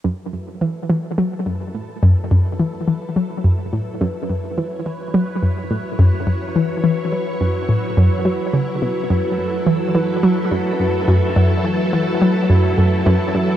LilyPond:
<<
  \new Staff \with { instrumentName = "Synth texture" } { \time 4/4 \key fis \minor \tempo 4 = 106 b'1~ | b'1~ | b'1~ | b'1~ |
b'1~ | b'1 | }
  \new Staff \with { instrumentName = "String machine" } { \time 4/4 \key fis \minor << { a'1~ | a'1 | cis''1~ | cis''1 |
a'1~ | a'1 | } \\ { <fis e'>1~ | <fis e'>1~ | <fis e'>1~ | <fis e'>1~ |
<fis e'>1~ | <fis e'>1 | } >> }
  \new Staff \with { instrumentName = "Synth arpeggio sound" } { \clef bass \time 4/4 \key fis \minor fis,8 fis,8 e8 e8 fis8 fis,8 a,8 fis,8 | fis,8 e8 e8 fis8 fis,8 a,8 fis,8 fis,8 | e8 e8 fis8 fis,8 a,8 fis,8 fis,8 e8 | e8 fis8 fis,8 a,8 fis,8 fis8 cis8 b,8 |
fis,8 fis,8 e8 e8 fis8 fis,8 fis,8 fis,8 | fis,8 e8 e8 fis8 fis,8 fis,8 fis,8 fis,8 | }
>>